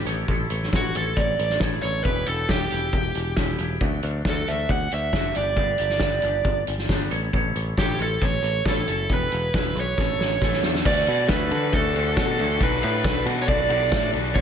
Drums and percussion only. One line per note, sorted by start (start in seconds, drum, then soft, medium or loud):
0.06 closed hi-hat medium
0.28 kick loud
0.50 closed hi-hat medium
0.63 snare soft
0.73 kick loud
0.73 snare medium
0.95 closed hi-hat medium
1.17 kick medium
1.39 closed hi-hat medium
1.50 snare soft
1.60 kick loud
1.60 snare loud
1.83 closed hi-hat medium
2.05 kick loud
2.26 closed hi-hat medium
2.49 kick loud
2.49 snare loud
2.71 closed hi-hat medium
2.93 kick loud
3.15 closed hi-hat medium
3.37 kick loud
3.37 snare medium
3.58 closed hi-hat medium
3.81 kick loud
4.03 closed hi-hat medium
4.25 kick loud
4.25 snare medium
4.47 closed hi-hat medium
4.69 kick medium
4.91 closed hi-hat medium
5.13 kick loud
5.13 snare loud
5.35 closed hi-hat medium
5.57 kick loud
5.78 closed hi-hat medium
5.89 snare soft
6.00 kick loud
6.00 snare loud
6.22 closed hi-hat medium
6.45 kick loud
6.67 closed hi-hat medium
6.78 snare soft
6.89 kick medium
6.89 snare loud
7.11 closed hi-hat medium
7.33 kick loud
7.56 closed hi-hat medium
7.78 kick loud
7.78 snare loud
8.00 closed hi-hat medium
8.22 kick loud
8.44 closed hi-hat medium
8.66 kick loud
8.66 snare loud
8.88 closed hi-hat medium
9.10 kick loud
9.32 closed hi-hat medium
9.54 kick loud
9.54 snare loud
9.76 closed hi-hat medium
9.98 kick loud
9.98 snare medium
10.21 snare medium
10.42 kick loud
10.42 snare medium
10.53 snare medium
10.63 snare medium
10.75 snare medium
10.85 kick loud
10.85 crash loud
10.97 tambourine medium
11.07 ride medium
11.20 tambourine soft
11.28 kick loud
11.28 snare loud
11.28 ride medium
11.28 tambourine medium
11.51 ride medium
11.51 tambourine medium
11.73 kick loud
11.73 ride medium
11.85 tambourine soft
11.96 ride medium
11.96 tambourine medium
12.07 tambourine soft
12.17 kick loud
12.17 snare loud
12.17 ride loud
12.17 tambourine medium
12.39 ride medium
12.39 tambourine medium
12.60 kick loud
12.60 ride loud
12.72 tambourine medium
12.83 ride medium
12.95 tambourine soft
13.04 kick loud
13.04 snare loud
13.04 ride loud
13.04 tambourine medium
13.26 ride medium
13.26 tambourine medium
13.48 kick loud
13.48 ride medium
13.59 tambourine soft
13.70 ride medium
13.70 tambourine medium
13.82 tambourine soft
13.92 kick loud
13.92 snare loud
13.92 ride loud
13.92 tambourine medium
14.13 ride medium
14.13 tambourine medium
14.35 kick loud
14.35 ride medium